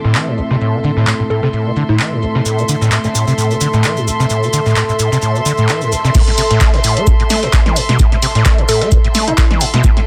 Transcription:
Already playing: A2 A3 C4 E4 A4 E5 C6 D6
0.04 A2, snare
0.15 E3, clap
0.28 A2
0.38 A1, shaker
0.51 C3, snare
0.61 A2, shaker
0.74 B2
0.84 D3, shaker
0.97 A2, snare
1.07 A2, clap
1.20 A2
1.30 A2 A4, shaker
1.43 C3 A4, snare
1.53 A2, shaker
1.66 B2
1.76 D3, shaker
1.89 A2 E4
1.99 E3, clap
2.12 A2
2.22 A1, shaker
2.35 C3, snare
2.45 A2, shaker, maracas
2.58 B2, maracas
2.69 D3, maracas, shaker
2.81 A2, snare, maracas
2.91 A2, clap, maracas
3.04 A2, snare, maracas
3.15 A2, shaker, maracas
3.27 C3, maracas
3.38 A2, shaker, maracas
3.51 B2, maracas
3.61 D3, maracas, shaker
3.73 A2, snare, maracas
3.83 E3, clap, maracas, shaker
3.97 A2, maracas
4.07 A1, shaker, maracas
4.20 C3, snare, maracas
4.30 A2, maracas, shaker
4.43 B2, maracas
4.53 D3, maracas, shaker
4.66 A2, snare, maracas
4.76 A2, clap, maracas, shaker
4.89 A2, maracas
4.99 A2, maracas, shaker
5.12 C3, snare, maracas
5.22 A2, maracas, shaker
5.35 B2, maracas
5.45 D3, shaker, maracas
5.57 A2, maracas
5.69 E3, clap, shaker, maracas
5.81 A2, maracas
5.92 A1, shaker, maracas
6.04 C3, snare, maracas
6.15 A2, kick, snare, closed hi-hat, crash, shaker
6.28 A2, snare, closed hi-hat
6.38 C3, open hi-hat, shaker
6.51 A2, snare, closed hi-hat
6.61 A3, kick, snare, clap, closed hi-hat, shaker
6.74 A2, snare, closed hi-hat
6.84 A2, open hi-hat, shaker
6.97 A3, closed hi-hat
7.07 A2, kick, closed hi-hat, shaker
7.20 A2, closed hi-hat
7.30 A3, snare, open hi-hat, shaker
7.43 A2, snare, closed hi-hat
7.53 A3, kick, snare, clap, closed hi-hat, shaker
7.66 E3, snare, closed hi-hat
7.76 A2, open hi-hat, shaker
7.89 B2, snare, closed hi-hat
7.99 A2, kick, snare, closed hi-hat, shaker
8.12 A2, snare, closed hi-hat
8.22 C3, open hi-hat, shaker
8.35 A2, snare, closed hi-hat
8.45 A3, kick, snare, clap, closed hi-hat, shaker
8.58 A2, closed hi-hat
8.69 A2 A4, open hi-hat, shaker
8.81 A3 A4, snare, closed hi-hat
8.92 A2, kick, closed hi-hat, shaker
9.04 A2, closed hi-hat
9.15 A3, snare, open hi-hat, shaker
9.28 A2 E4, closed hi-hat
9.38 A3, kick, snare, clap, closed hi-hat, shaker
9.51 E3, snare, closed hi-hat
9.61 A2, open hi-hat, shaker
9.74 B2, snare, closed hi-hat
9.84 kick, snare, closed hi-hat, shaker
9.97 A2, snare, closed hi-hat

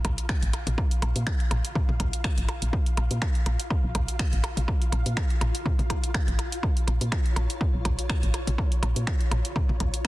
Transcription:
Already playing: F4 F5
0.05 A#1, kick, closed hi-hat, percussion blips
0.18 closed hi-hat
0.29 finger snap, kick, percussion blips
0.42 G#1, closed hi-hat
0.53 closed hi-hat, percussion blips
0.67 A#1, closed hi-hat, mid tom
0.78 kick, percussion blips
0.91 closed hi-hat
1.02 A#1, closed hi-hat, percussion blips
1.16 A#2, closed hi-hat
1.27 finger snap, kick, percussion blips
1.40 closed hi-hat
1.51 A#1, closed hi-hat, mid tom, percussion blips
1.65 closed hi-hat
1.75 kick, mid tom, percussion blips
1.89 A#1, mid tom
2.00 A#1, kick, closed hi-hat, percussion blips
2.13 closed hi-hat
2.24 finger snap, kick, percussion blips
2.38 G#1, closed hi-hat
2.49 closed hi-hat, percussion blips
2.62 A#1, closed hi-hat
2.73 kick, percussion blips
2.86 closed hi-hat
2.97 A#1, closed hi-hat, percussion blips
3.11 A#2, closed hi-hat
3.22 finger snap, kick, percussion blips
3.35 closed hi-hat
3.46 A#1, closed hi-hat, percussion blips
3.60 closed hi-hat
3.70 kick, percussion blips
3.84 A#1
3.95 A#1, kick, closed hi-hat, percussion blips
4.08 closed hi-hat
4.19 finger snap, kick, percussion blips
4.33 G#1, closed hi-hat
4.44 closed hi-hat, percussion blips
4.57 A#1, closed hi-hat, mid tom
4.68 kick, percussion blips
4.82 closed hi-hat
4.92 A#1, closed hi-hat, percussion blips
5.06 A#2, closed hi-hat
5.17 finger snap, kick, percussion blips
5.30 closed hi-hat
5.41 A#1, closed hi-hat, mid tom, percussion blips
5.55 closed hi-hat
5.66 kick, mid tom, percussion blips
5.79 A#1, closed hi-hat, mid tom
5.90 kick, closed hi-hat, percussion blips
6.04 closed hi-hat
6.14 finger snap, kick, percussion blips
6.28 G#1, closed hi-hat
6.39 closed hi-hat, percussion blips
6.52 closed hi-hat
6.63 C#5, kick, percussion blips
6.77 closed hi-hat
6.88 A#1, closed hi-hat, percussion blips
7.01 A#2, closed hi-hat
7.12 finger snap, kick, percussion blips
7.26 closed hi-hat
7.36 A#1, closed hi-hat, percussion blips
7.50 closed hi-hat
7.61 kick, percussion blips
7.74 A#1
7.85 A#1, kick, closed hi-hat, percussion blips
7.99 closed hi-hat
8.10 finger snap, kick, percussion blips
8.23 G#1, closed hi-hat
8.34 closed hi-hat, percussion blips
8.47 A#1, closed hi-hat, mid tom
8.58 kick, percussion blips
8.72 closed hi-hat
8.83 A#1, closed hi-hat, percussion blips
8.96 A#2, closed hi-hat
9.07 finger snap, kick, percussion blips
9.21 closed hi-hat
9.31 A#1, closed hi-hat, mid tom, percussion blips
9.45 closed hi-hat
9.56 kick, mid tom, percussion blips
9.69 A#1, mid tom
9.80 A#1, kick, closed hi-hat, percussion blips
9.94 closed hi-hat

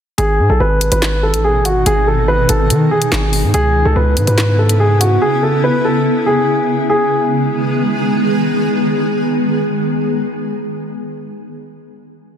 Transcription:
0.18 G#1 B2 D#3 D#4 G#4, closed hi-hat
0.39 G#2
0.50 B1 A4
0.60 G#1 B4
0.81 closed hi-hat
0.92 G#1 B4, closed hi-hat
1.02 snare, clap, closed hi-hat
1.23 A4
1.34 A1, closed hi-hat
1.44 G#4
1.60 G#1
1.65 F#4, closed hi-hat
1.86 G#1 G#4, closed hi-hat
2.07 A4
2.28 B4
2.49 G#1 A4, closed hi-hat
2.70 D#3, closed hi-hat
2.91 G#4
3.02 closed hi-hat
3.12 G#1, snare, clap, closed hi-hat
3.33 open hi-hat
3.44 G#2
3.54 C#2 C#3 B3 E4 G#4, closed hi-hat
3.85 C#2 A4
3.96 C#2 B4
4.17 G#2, closed hi-hat
4.27 G#2 B4, closed hi-hat
4.38 snare, clap, closed hi-hat
4.59 A4
4.69 closed hi-hat
4.80 G#4
5.00 F#4, closed hi-hat
5.22 G#4
5.43 A4
5.64 B4
5.85 A4
6.26 G#4
6.90 D#3 G#3 B3 G#4

